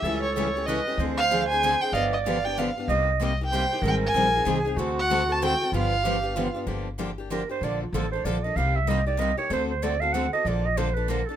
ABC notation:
X:1
M:3/4
L:1/16
Q:"Swing" 1/4=190
K:Gphr
V:1 name="Violin"
=e2 ^c2 c4 _e3 z | z2 f4 a4 g3/2 e/2 | f2 e2 f2 g2 f3 z | z4 e2 g6 |
g2 a8 z2 | z2 ^f4 =a2 g4 | f8- f2 z2 | [K:Gm] z12 |
z12 | z12 | z12 | z12 |]
V:2 name="Clarinet"
=A8 =B4 | c12 | d8- d2 z2 | e4 z4 c4 |
B8 A4 | ^F12 | F4 G4 F4 | [K:Gm] z8 B2 c2 |
d2 F2 A2 c2 d2 e2 | f2 =e2 _e2 d2 e2 ^c2 | c2 c2 d2 f2 ^f2 e2 | d2 e2 c2 =B2 _B2 A2 |]
V:3 name="Steel-string acoustic guitar"
[^C,=E,=A,^CG]2 z2 [C,E,A,CG]2 [A,CG]2 [C,E,A,CG]2 [A,CG]2 | [D,F,CDA]2 z2 [D,F,CDA]2 [CDA]2 [D,F,CDA]2 [CDA]2 | [D,F,=B,DG]2 z2 [D,F,B,DG]2 [B,DG]2 [D,F,B,DG]2 [B,DG]2 | [C,G,B,EG]2 z2 [C,G,B,EG]2 [B,EG]2 [C,G,B,EG]2 [B,EG]2 |
[E,G,CEA]2 z2 [E,G,CEA]2 [CEA]2 [E,G,CEA]2 [CEA]2 | [D,=A,C^F=A]2 z2 [D,A,CFA]2 [CFA]2 [D,A,CFA]2 [CFA]2 | [D,F,=B,DG]2 z2 [D,F,B,DG]2 [B,DG]2 [D,F,B,DG]2 [B,DG]2 | [K:Gm] [D,F,B,DG]2 z2 [D,F,B,DG]2 [B,DG]2 [D,F,B,DG]2 [B,DG]2 |
[D,F,B,DA]2 z2 [D,F,B,DA]2 [B,DA]2 [D,F,B,DA]2 [B,DA]2 | [C,G,B,EG]2 z2 [C,G,B,EG]2 [B,EG]2 [C,G,B,EG]2 [B,EG]2 | [D,A,C^FA]2 z2 [D,A,CFA]2 [CFA]2 [D,A,CFA]2 [CFA]2 | [D,F,B,DA]2 z2 [D,F,B,DA]2 [B,DA]2 [D,F,B,DA]2 [B,DA]2 |]
V:4 name="Steel-string acoustic guitar"
[^C,G,^C=E=A^c]2 z2 [C,G,CEAc]2 z2 [C,G,CEAc]2 z2 | [D,F,CDA]2 z2 [D,F,CDA]2 z2 [D,F,CDA]2 z2 | [D,F,=B,DG]2 z2 [D,F,B,DG]2 z2 [D,F,B,DG]2 z2 | [C,G,B,EG]2 z2 [C,G,B,EG]2 z2 [C,G,B,EG]2 z2 |
[E,G,CEA]2 z2 [E,G,CEA]2 z2 [E,G,CEA]2 z2 | [D,=A,C^F=A]2 z2 [D,A,CFA]2 z2 [D,A,CFA]2 z2 | [D,F,=B,DG]2 z2 [D,F,B,DG]2 z2 [D,F,B,DG]2 z2 | [K:Gm] [D,F,B,DG]2 z2 [D,F,B,DG]2 z2 [D,F,B,DG]2 z2 |
[D,F,B,DA]2 z2 [D,F,B,DA]2 z2 [D,F,B,DA]2 z2 | [C,G,B,EG]2 z2 [C,G,B,EG]2 z2 [C,G,B,EG]2 z2 | [D,A,C^FA]2 z2 [D,A,CFA]2 z2 [D,A,CFA]2 z2 | [D,F,B,DA]2 z2 [D,F,B,DA]2 z2 [D,F,B,DA]2 z2 |]
V:5 name="Upright bass" clef=bass
^C,,12 | D,,12 | G,,,12 | C,,12 |
A,,,4 B,,,4 C,,4 | D,,12 | G,,,12 | [K:Gm] G,,,12 |
B,,,4 A,,,4 B,,,4 | C,,12 | D,,12 | B,,,12 |]